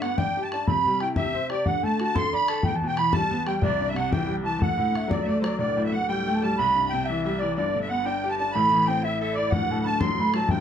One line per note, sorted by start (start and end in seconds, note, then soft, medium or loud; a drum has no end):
0.00 0.64 G2 medium
0.00 0.18 B3 medium
0.00 0.17 F#5 medium
0.00 0.19 F#5 medium
0.00 bodhran medium
0.17 0.35 D4 medium
0.17 0.44 G5 medium
0.17 bodhran medium
0.27 bodhran soft
0.37 0.52 G4 medium
0.42 0.49 A5 medium
0.42 0.50 A5 medium
0.50 0.68 D4 medium
0.50 0.68 A5 medium
0.50 0.66 A5 medium
0.50 bodhran medium
0.67 1.63 C3 medium
0.67 1.02 B5 loud
0.67 1.02 B5 medium
0.67 bodhran medium
0.85 1.01 G3 medium
0.85 bodhran soft
1.00 1.17 E4 soft
1.00 1.15 G5 medium
1.00 1.08 G5 medium
1.00 bodhran soft
1.16 1.34 G4 medium
1.16 1.47 E5 medium
1.16 bodhran medium
1.25 bodhran soft
1.34 1.50 C5 medium
1.34 bodhran soft
1.49 1.65 G4 medium
1.49 1.67 D5 medium
1.49 bodhran medium
1.65 2.61 D3 medium
1.65 1.85 F#5 loud
1.65 1.82 F#5 medium
1.65 bodhran medium
1.83 1.99 A3 medium
1.83 1.99 A5 medium
1.83 2.00 A5 medium
1.83 bodhran soft
1.99 2.15 F#4 medium
1.99 2.17 A5 loud
1.99 2.17 A5 medium
1.99 bodhran soft
2.15 2.32 A4 medium
2.15 2.32 C6 loud
2.15 2.34 C6 medium
2.15 bodhran medium
2.26 bodhran soft
2.33 2.48 D5 medium
2.33 2.50 B5 loud
2.33 2.66 B5 medium
2.33 bodhran soft
2.48 2.65 A4 medium
2.48 2.65 A5 loud
2.48 bodhran medium
2.63 3.60 E2 medium
2.63 2.76 G5 loud
2.63 2.76 G5 medium
2.63 bodhran medium
2.75 2.88 A5 medium
2.82 2.98 B2 medium
2.82 bodhran soft
2.87 2.99 G5 loud
2.87 2.98 G5 medium
2.96 3.13 E3 soft
2.96 3.13 B5 medium
2.96 3.16 B5 loud
2.96 bodhran medium
3.12 3.30 G3 medium
3.12 3.44 A5 medium
3.12 3.49 A5 medium
3.12 bodhran medium
3.22 bodhran soft
3.31 3.46 B3 medium
3.31 bodhran soft
3.46 3.62 G3 medium
3.46 3.63 G5 medium
3.46 3.62 G5 medium
3.46 bodhran medium
3.62 4.58 C2 medium
3.62 3.89 D5 medium
3.62 3.90 D5 loud
3.62 bodhran medium
3.80 3.95 G2 medium
3.80 bodhran soft
3.88 3.96 E5 medium
3.88 3.97 E5 medium
3.94 4.10 C3 medium
3.94 4.13 F#5 medium
3.94 4.11 F#5 medium
3.94 bodhran medium
4.11 4.28 E3 medium
4.11 4.35 G5 medium
4.11 4.37 G5 medium
4.11 bodhran medium
4.21 bodhran soft
4.27 4.44 G3 medium
4.27 bodhran soft
4.43 4.59 E3 medium
4.43 4.61 A5 medium
4.43 4.64 A5 medium
4.59 5.55 D2 medium
4.59 5.12 F#5 medium
4.59 4.98 F#5 medium
4.59 bodhran medium
4.78 4.93 A2 medium
4.78 bodhran soft
4.92 5.09 D3 soft
4.92 bodhran medium
4.96 5.14 E5 medium
5.08 5.26 F#3 medium
5.08 5.22 D5 medium
5.08 bodhran medium
5.12 5.38 D5 medium
5.19 5.27 E5 soft
5.19 bodhran soft
5.26 5.42 A3 medium
5.26 5.38 D5 medium
5.26 bodhran soft
5.40 5.58 F#3 medium
5.40 5.44 C5 soft
5.40 5.57 D5 medium
5.44 bodhran medium
5.58 6.53 D1 medium
5.58 6.54 D2 medium
5.58 5.82 D5 medium
5.58 5.87 D5 medium
5.77 5.92 A2 medium
5.84 5.93 E5 medium
5.84 5.96 E5 medium
5.92 6.08 D3 medium
5.92 6.07 F#5 medium
5.92 6.11 F#5 medium
6.08 6.26 G3 medium
6.08 6.43 G5 medium
6.08 6.36 G5 medium
6.27 6.42 A3 medium
6.35 6.42 A5 medium
6.42 6.57 G3 medium
6.42 6.58 A5 medium
6.42 6.57 A5 medium
6.57 7.53 C2 medium
6.57 6.88 B5 loud
6.57 6.92 B5 medium
6.76 6.91 G2 medium
6.89 7.06 G5 medium
6.89 7.07 G5 medium
6.93 7.07 C3 medium
7.04 7.21 E5 medium
7.04 7.40 E5 medium
7.10 7.25 E3 medium
7.23 7.40 G3 medium
7.23 7.40 E5 medium
7.39 7.56 E3 medium
7.39 7.54 D5 medium
7.39 7.55 D5 medium
7.55 8.51 G1 medium
7.55 8.52 G2 medium
7.55 7.79 D5 medium
7.55 7.83 D5 medium
7.76 7.90 D3 medium
7.81 7.88 E5 medium
7.81 7.89 E5 medium
7.88 8.05 B3 soft
7.88 8.05 F#5 medium
7.88 8.08 F#5 medium
8.04 8.22 D4 medium
8.04 8.31 G5 medium
8.04 8.32 G5 medium
8.24 8.38 G4 medium
8.29 8.35 A5 medium
8.29 8.38 A5 loud
8.37 8.54 D4 soft
8.37 8.54 A5 medium
8.37 8.56 A5 medium
8.52 9.49 A1 medium
8.52 9.50 A2 medium
8.52 8.87 B5 medium
8.52 8.89 B5 loud
8.71 8.86 E3 medium
8.85 9.03 C4 soft
8.85 9.02 G5 medium
8.85 9.05 G5 medium
9.03 9.20 E4 medium
9.03 9.19 E5 medium
9.03 9.38 E5 medium
9.20 9.36 A4 medium
9.20 9.35 E5 medium
9.34 9.52 E4 medium
9.34 9.51 D5 medium
9.34 9.52 D5 medium
9.50 10.46 D1 medium
9.50 10.48 D2 medium
9.50 9.85 F#5 medium
9.50 bodhran medium
9.54 9.72 F#5 medium
9.70 9.85 A2 medium
9.70 9.82 A5 medium
9.70 bodhran soft
9.83 10.01 D3 soft
9.83 10.01 A5 medium
9.83 9.89 B5 medium
9.87 10.02 A5 medium
10.00 10.18 F#3 medium
10.00 10.35 C6 medium
10.00 10.21 C6 loud
10.00 bodhran loud
10.10 bodhran soft
10.18 10.34 A3 medium
10.18 10.35 B5 loud
10.18 bodhran soft
10.34 10.49 F#3 medium
10.34 10.49 A5 medium
10.34 10.52 A5 medium
10.34 bodhran medium
10.49 10.61 G1 medium
10.49 10.61 G2 medium
10.49 10.61 G5 medium
10.49 10.61 G5 loud
10.49 bodhran medium